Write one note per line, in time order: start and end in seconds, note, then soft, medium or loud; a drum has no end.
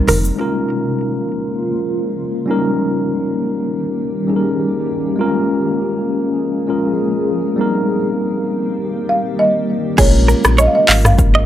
0.00 0.36 C3 medium
0.00 0.36 D#3 medium
0.00 0.36 G3 medium
0.00 0.38 G3 medium
0.00 0.34 A#3 medium
0.00 0.38 C4 medium
0.00 0.36 D#4 medium
0.00 0.39 D#4 medium
0.00 0.40 A#4 medium
0.08 0.32 F1 medium
0.08 0.17 A#4 medium
0.08 open hi-hat medium
0.08 high conga medium
0.08 shaker medium
0.24 shaker medium
0.36 2.46 C#3 medium
0.36 2.46 F3 medium
0.36 2.43 G#3 medium
0.36 2.46 G#3 medium
0.36 2.46 A#3 medium
0.36 2.44 C#4 medium
0.36 2.46 F4 medium
0.36 2.45 F4 medium
0.41 2.46 A#4 medium
2.46 5.16 D#3 medium
2.46 4.23 G3 medium
2.46 5.16 G3 medium
2.46 9.95 A#3 medium
2.46 4.24 C#4 medium
2.46 7.55 C#4 medium
2.46 4.25 D#4 medium
2.46 5.16 G4 medium
2.51 4.26 A#4 medium
4.27 5.18 G3 medium
4.27 5.18 C#4 medium
4.27 5.19 D#4 medium
4.27 4.36 G#4 medium
4.36 5.20 A#4 medium
5.16 7.56 F3 medium
5.16 6.64 G#3 medium
5.16 7.56 G#3 medium
5.16 5.25 C4 medium
5.16 6.66 F4 medium
5.16 7.56 G#4 medium
5.21 6.67 C#4 medium
5.21 6.67 A#4 medium
6.67 7.58 G#3 medium
6.67 7.58 C#4 medium
6.67 7.59 F4 medium
6.67 7.59 A#4 medium
7.56 9.96 D#3 medium
7.56 9.93 G3 medium
7.56 9.96 G3 medium
7.56 9.94 C4 medium
7.56 9.96 C4 medium
7.56 9.95 D#4 medium
7.56 9.96 G4 medium
7.61 9.96 A#4 medium
9.09 9.40 F5 medium
9.39 10.01 D#5 loud
9.96 10.34 A#1 loud
9.96 11.46 C#3 medium
9.96 11.46 F3 medium
9.96 11.46 G#3 medium
9.96 11.46 A#3 medium
9.96 11.46 C#4 medium
9.96 11.46 F4 medium
9.96 10.07 G#4 loud
9.96 10.61 C#5 loud
9.96 kick loud
9.96 crash loud
9.96 shaker medium
10.01 11.46 A#4 medium
10.28 10.37 A#4 medium
10.28 shaker medium
10.44 10.68 A#1 medium
10.44 cross-stick loud
10.44 shaker medium
10.58 10.67 C#5 medium
10.58 10.66 D#5 medium
10.58 shaker medium
10.67 10.74 F5 medium
10.75 11.03 D#5 loud
10.88 11.46 G#1 medium
10.88 10.97 F5 medium
10.88 clap loud
10.88 open hi-hat medium
10.88 shaker soft
11.05 11.46 F5 loud
11.05 cross-stick loud
11.05 mid tom loud
11.05 shaker medium
11.18 kick medium
11.18 shaker medium
11.35 11.42 D#5 medium